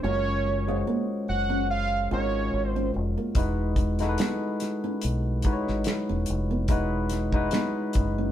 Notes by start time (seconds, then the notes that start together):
0.02 F#1 G#3 C#4 F4 F#4 A#4 C#5
0.47 muted nylon-string guitar stroke
0.67 G#3 C#4 F4 F#4 G#4 C5
0.76 C#5
0.87 A#3
1.28 F#1 F#5, muted nylon-string guitar stroke
1.50 C#4
1.70 F5
2.11 G#1 G#3 C#4 F4 F#4 A#4 C#5
2.54 G#1
2.66 C5
2.76 C#4
2.94 F1, muted nylon-string guitar stroke
3.18 A#3
3.35 E1 G#3 D#4 E4 F#4 B4, kick, closed hi-hat
3.76 muted nylon-string guitar stroke, kick, closed hi-hat
3.99 G#3 D#4 E4 F#4 A4, snare, closed hi-hat
4.09 B4
4.18 B3, finger snap, snare, closed hi-hat
4.60 muted nylon-string guitar stroke, snare, closed hi-hat
4.84 C#4
5.01 B1, closed hi-hat
5.42 G#3 D#4 E4 F#4 B4, kick, closed hi-hat
5.53 C#5
5.68 G#1, snare
5.84 finger snap, snare, closed hi-hat
6.09 E1 C#4
6.26 F1, muted nylon-string guitar stroke, closed hi-hat
6.51 B3
6.68 E1 G#3 D#4 E4 F#4 B4, kick, closed hi-hat
7.10 muted nylon-string guitar stroke, snare, closed hi-hat
7.32 G#3 D#4 E4 F#4 B4, kick
7.51 B3, finger snap, snare, closed hi-hat
7.93 F#1, muted nylon-string guitar stroke, kick, closed hi-hat
8.18 C#4